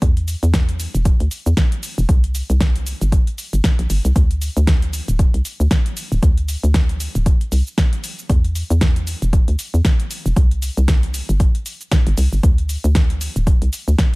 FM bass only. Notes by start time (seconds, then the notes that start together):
0.02 E2
0.43 E2
0.95 E1
1.20 D2
1.46 E2
1.98 E1
2.09 C2
2.50 C2
3.01 G1
3.53 G1
3.79 A#1
3.90 G1
4.05 C2
4.16 D2
4.57 D2
5.08 D1
5.34 C2
5.60 D2
6.12 D1
6.23 D2
6.63 D2
7.15 D1
7.52 C2
8.30 E2
8.70 E2
9.22 E1
9.48 D2
9.74 E2
10.26 E1
10.36 C2
10.77 C2
11.29 G1
12.07 G1
12.18 C2
12.33 G1
12.43 D2
12.84 D2
13.36 D1
13.62 C2
13.88 D2